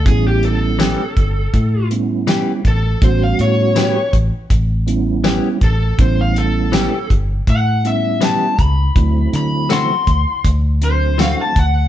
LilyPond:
<<
  \new Staff \with { instrumentName = "Electric slide guitar" } { \time 4/4 \key a \dorian \tempo 4 = 81 gis'16 g'16 a'2 r4 a'8 | c''16 f''16 cis''4 r2 a'8 | c''16 f''16 a'4 r8 fis''8 e''8 a''8 b''8~ | b''8 b''8 c'''4 r8 c''8 f''16 a''16 fis''8 | }
  \new Staff \with { instrumentName = "Clean electric guitar" } { \time 4/4 \key a \dorian r4 <e b cis' g'>8 r4. <e b cis' g'>8 r8 | r4 <e b cis' g'>8 r4. <e b cis' g'>8 r8 | r4 <e b cis' g'>8 r4. <e b cis' g'>8 r8 | r4 <e a c' fis'>8 r4. <e a c' fis'>8 r8 | }
  \new Staff \with { instrumentName = "Tonewheel organ" } { \time 4/4 \key a \dorian <g b cis' e'>4~ <g b cis' e'>16 r4 r16 <g b cis' e'>4 r8 | <g b cis' fis'>4~ <g b cis' fis'>16 r4 r16 <g b cis' e'>4 r8 | <g b cis' e'>4~ <g b cis' e'>16 r4 r16 <g b cis' e'>4 r8 | <fis a c' e'>4~ <fis a c' e'>16 r4 r16 <fis a c' d'>4 r8 | }
  \new Staff \with { instrumentName = "Fingered electric bass" } { \clef bass \time 4/4 \key a \dorian a,,4. g,,8 a,4. a,,8 | a,,8 a,4 a,,16 r16 a,,4. a,,8 | a,,4. g,,8 a,4. cis,8 | d,8 d4 d,16 r16 d,4. d,8 | }
  \new DrumStaff \with { instrumentName = "Drums" } \drummode { \time 4/4 <hh bd>8 hh8 <hh sn tamb>8 <hh bd>8 <hh bd>8 hh8 <hh sn tamb>8 <hh bd>8 | <hh bd>8 hh8 <hh sn tamb>8 <hh bd>8 <hh bd>8 hh8 <hh sn tamb>8 <hh bd>8 | <hh bd>8 hh8 <hh sn tamb>8 <hh bd>8 <hh bd>8 hh8 <hh sn tamb>8 <hh bd>8 | <hh bd>8 hh8 <hh sn tamb>8 <hh bd>8 <hh bd>8 hh8 <hh sn tamb>8 <hh bd>8 | }
>>